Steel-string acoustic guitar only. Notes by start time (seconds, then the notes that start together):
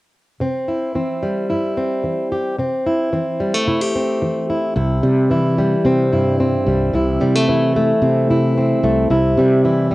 0.40 C3 C4
0.68 E4
0.95 E3 C4
1.23 G3
1.49 G2 E4
1.77 C4
2.04 E3
2.32 G4
2.59 C3 C4
2.87 E4
3.13 E3 C4
3.40 G3
3.54 A3
3.68 C3 E4
3.81 G4
3.96 C4
4.22 E3
4.50 E4
4.76 C3 E4
5.03 G3
5.30 E3 E4
5.58 G3
5.86 C4
6.12 G2 E4
6.40 C4
6.68 G3
6.94 C3 E4
7.21 G3
7.36 A3
7.48 E3 E4
7.76 A3
8.03 C4
8.29 C3 E4
8.57 C4
8.84 A3
9.10 C3 E4
9.39 G3
9.64 E3 E4
9.91 G3